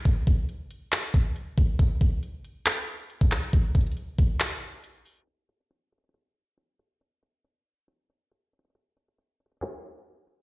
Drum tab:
HH |x---x---x---x---x---x---x---x---|x---x---x---x---x---x---x---o---|x---xxxxx---x---x---x---x---o---|x---x-x-x---xxxxx-------x---x---|
CP |----------------x---------------|----------------x-----------x---|----------------x---------------|--------------------------------|
BD |o---o---------------o-------o---|o---o---------------------o-----|o---o-------o-------------------|--------------------------------|

HH |x---x---x-------x---x---x---xxxx|x---x-x-x---xxxx--------x---x---|
CP |--------------------------------|----------------x---------------|
BD |--------------------------------|--------------------------------|